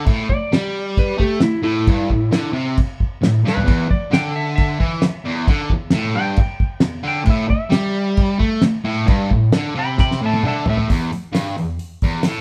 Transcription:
0.06 distorted electric guitar A2, kick, crash
0.29 electric slide guitar D5, muted distorted electric guitar stroke, kick
0.52 distorted electric guitar G3, snare, crash
0.97 electric slide guitar B4, kick, crash
1.18 distorted electric guitar A3, electric slide guitar G4, kick
1.40 electric slide guitar E4, muted distorted electric guitar stroke, snare, crash
1.62 distorted electric guitar A2, electric slide guitar E4
1.87 distorted electric guitar G2, kick, crash
2.10 distorted electric guitar A2, kick
2.31 distorted electric guitar D3, snare, crash
2.53 distorted electric guitar C3
2.77 kick, crash
3.00 kick
3.22 distorted electric guitar A2, snare, crash
3.45 distorted electric guitar G2, electric slide guitar B4, snare
3.57 floor tom
3.65 distorted electric guitar E2, kick, crash
3.89 electric slide guitar D5, muted distorted electric guitar stroke, kick
4.11 distorted electric guitar D3, electric slide guitar G5, snare, crash
4.36 electric slide guitar E5
4.56 electric slide guitar E5, kick, crash
4.80 distorted electric guitar E3, kick
5.02 muted distorted electric guitar stroke, snare, crash
5.25 distorted electric guitar E2
5.48 distorted electric guitar D3, kick, crash
5.70 distorted electric guitar E2, kick
5.90 distorted electric guitar A2, snare, crash
6.14 distorted electric guitar G2, electric slide guitar G5
6.36 kick, crash
6.60 kick
6.80 distorted electric guitar E2, snare, crash
7.03 distorted electric guitar D3
7.08 electric slide guitar G5
7.25 distorted electric guitar A2, kick, crash
7.30 electric slide guitar E5
7.48 electric slide guitar E5, muted distorted electric guitar stroke, kick
7.70 distorted electric guitar G3, snare, crash
8.17 kick, crash
8.39 distorted electric guitar A3, kick
8.62 muted distorted electric guitar stroke, snare, crash
8.84 distorted electric guitar A2
9.06 distorted electric guitar G2, kick, crash
9.31 distorted electric guitar A2, kick
9.52 distorted electric guitar D3, snare, crash
9.75 distorted electric guitar C3, electric slide guitar G5 B5
9.98 electric slide guitar G5 B5, kick, snare
10.11 snare
10.21 distorted electric guitar A2, electric slide guitar E5
10.26 electric slide guitar A5
10.34 high tom
10.43 distorted electric guitar D3, electric slide guitar E5, mid tom
10.48 electric slide guitar A5
10.66 distorted electric guitar A2, electric slide guitar E5, floor tom
10.77 floor tom
10.89 distorted electric guitar E2, kick, open hi-hat
11.13 muted distorted electric guitar stroke, open hi-hat
11.33 distorted electric guitar G2, snare, open hi-hat
11.57 distorted electric guitar E2, open hi-hat
11.79 open hi-hat
12.02 distorted electric guitar E2, kick, open hi-hat
12.23 distorted electric guitar A2, snare, open hi-hat

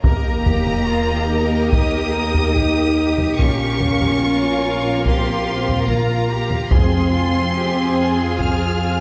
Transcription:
0.03 double bass section D#2, trombone section A#3, french horn section A#3, viola section A#3 G4, violin section A#4 D#5 A#5, cello section A#4, taiko, sub drop
0.46 cello section G4, taiko low
0.67 taiko low
0.88 cello section F4
1.30 cello section D#4
1.71 french horn section D#4, trombone section D#4, cello section G4, violin section D#6, taiko
2.14 cello section A#4
2.35 taiko low
2.56 cello section G4, taiko
3.18 taiko low
3.38 double bass section A#1, viola section A#3 F4, french horn section C#4, trombone section C#4, violin section A#4 F5 C#6, taiko
3.81 taiko low
4.02 taiko low
4.23 cello section F4
5.06 trombone section C4, french horn section C4, cello section G4, violin section C6, taiko
5.68 taiko low
5.87 trombone section A#3, french horn section A#3, cello section F4, violin section A#5, taiko
6.30 cello section G4
6.50 taiko low
6.70 timpani F2, double bass section F2, trombone section C4, viola section C4 F4, french horn section C4, cello section G#4, violin section G#4 G#5 C6, taiko
7.13 cello section F4
7.54 cello section G4
7.96 cello section G#4
8.38 trombone section F4, french horn section F4, violin section F6, taiko

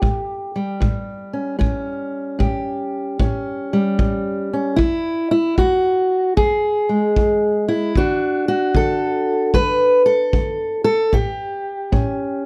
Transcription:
Already playing: steel-string acoustic guitar G4
0.02 steel-string acoustic guitar A2, kick
0.56 steel-string acoustic guitar G3
0.80 steel-string acoustic guitar A2, kick
1.33 steel-string acoustic guitar C#4
1.59 steel-string acoustic guitar A2 C#4, kick
2.39 steel-string acoustic guitar A2 G4, kick
3.20 steel-string acoustic guitar A2 C#4, kick
3.73 steel-string acoustic guitar G3
3.99 steel-string acoustic guitar A2, kick
4.53 steel-string acoustic guitar C#4
4.76 steel-string acoustic guitar E2 E4, kick
5.31 steel-string acoustic guitar E4
5.58 steel-string acoustic guitar E2 F#4, kick
6.37 steel-string acoustic guitar E2 G#4, kick
6.89 steel-string acoustic guitar G#3
7.16 steel-string acoustic guitar E2, kick
7.68 steel-string acoustic guitar E4
7.96 steel-string acoustic guitar D3 D4 F#4, kick
8.48 steel-string acoustic guitar F#4
8.75 steel-string acoustic guitar D3 A4, kick
9.54 steel-string acoustic guitar D3 B4, kick
10.06 steel-string acoustic guitar A4
10.33 steel-string acoustic guitar D3, kick
10.84 steel-string acoustic guitar A4
11.12 steel-string acoustic guitar A2 G4, kick
11.92 steel-string acoustic guitar A2 C#4, kick

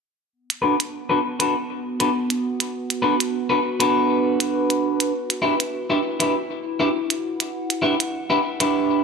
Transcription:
0.33 ambient pad B3
0.50 closed hi-hat
0.62 clean electric guitar D4 F#4 A4 B4
0.80 closed hi-hat
1.09 clean electric guitar D4 F#4 A4 B4
1.25 ambient pad F#4
1.40 clean electric guitar D4 F#4 A4 B4, closed hi-hat
2.00 clean electric guitar D4 F#4 A4 B4, ambient pad B4, closed hi-hat
2.30 closed hi-hat
2.60 closed hi-hat
2.90 closed hi-hat
3.02 clean electric guitar D4 F#4 A4 B4
3.20 closed hi-hat
3.50 clean electric guitar D4 F#4 A4 B4
3.80 clean electric guitar D4 F#4 A4 B4, closed hi-hat
4.40 closed hi-hat
4.70 closed hi-hat
5.00 closed hi-hat
5.13 ambient pad E4
5.30 closed hi-hat
5.42 clean electric guitar D4 E4 G4 B4
5.60 closed hi-hat
5.90 clean electric guitar D4 E4 G4 B4
6.20 clean electric guitar D4 E4 G4 B4, closed hi-hat
6.80 clean electric guitar D4 E4 G4 B4
7.02 ambient pad F#5
7.10 closed hi-hat
7.40 closed hi-hat
7.70 closed hi-hat
7.82 clean electric guitar D4 E4 G4 B4
8.00 closed hi-hat
8.30 clean electric guitar D4 E4 G4 B4
8.60 clean electric guitar D4 E4 G4 B4, closed hi-hat

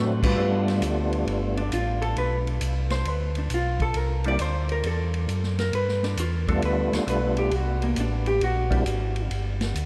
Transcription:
Already playing: tonewheel organ A2 F#3 A3 C4 D4 F#4
0.23 hollow-body jazz guitar G3 D4 F4 B4, kick, crash
0.37 tonewheel organ G2 G3 A3 B3 D4 F4
0.68 snare, ride
0.81 tonewheel organ D2, hi-hat pedal, ride
1.13 ride
1.26 tonewheel organ G1, ride
1.57 hollow-body jazz guitar D4, ride
1.72 tonewheel organ A1, hollow-body jazz guitar F4, hi-hat pedal, ride
2.02 hollow-body jazz guitar A4, ride
2.16 tonewheel organ B1, hollow-body jazz guitar B4, ride
2.47 ride
2.61 tonewheel organ C2, hi-hat pedal, ride
2.90 hollow-body jazz guitar C5, snare, ride
3.05 tonewheel organ D2, hollow-body jazz guitar B4, ride
3.35 hollow-body jazz guitar D4, ride
3.50 tonewheel organ B1, hi-hat pedal, ride
3.54 hollow-body jazz guitar F4
3.80 hollow-body jazz guitar A4, kick, ride
3.94 tonewheel organ C2, hollow-body jazz guitar A#4, ride
4.24 tonewheel organ G3 A#3 C4 D4 E4, hollow-body jazz guitar D5, ride
4.39 tonewheel organ D2, hollow-body jazz guitar C5, hi-hat pedal, ride
4.69 hollow-body jazz guitar A#4, ride
4.83 tonewheel organ E2, hollow-body jazz guitar A4, ride
5.14 ride
5.28 tonewheel organ F#2, hi-hat pedal, ride
5.43 snare
5.58 hollow-body jazz guitar A#4, snare, ride
5.73 tonewheel organ G2, hollow-body jazz guitar B4, ride
5.88 snare
6.03 hollow-body jazz guitar D4, snare, ride
6.17 tonewheel organ E2, hollow-body jazz guitar F4, hi-hat pedal, ride
6.47 tonewheel organ G3 A3 B3 D4 F4, hollow-body jazz guitar A4, kick, ride
6.62 tonewheel organ D2, hollow-body jazz guitar B4, ride
6.92 tonewheel organ D2, hollow-body jazz guitar C5, snare, ride
7.06 tonewheel organ B1 G3 A3 B3 D4 F4, hollow-body jazz guitar B4, hi-hat pedal, ride
7.37 hollow-body jazz guitar G4, ride
7.51 tonewheel organ C2, ride
7.55 hollow-body jazz guitar F#4
7.82 hollow-body jazz guitar A#3, ride
7.96 tonewheel organ A1, hi-hat pedal, ride
8.00 hollow-body jazz guitar D4
8.26 hollow-body jazz guitar G4, ride
8.41 tonewheel organ A#1, hollow-body jazz guitar F#4, ride
8.70 tonewheel organ G3 A#3 C4 D4 E4, kick, ride
8.85 tonewheel organ G#1, hi-hat pedal, ride
9.16 ride
9.30 tonewheel organ G1, ride
9.61 snare, ride
9.75 tonewheel organ D2, hi-hat pedal, ride

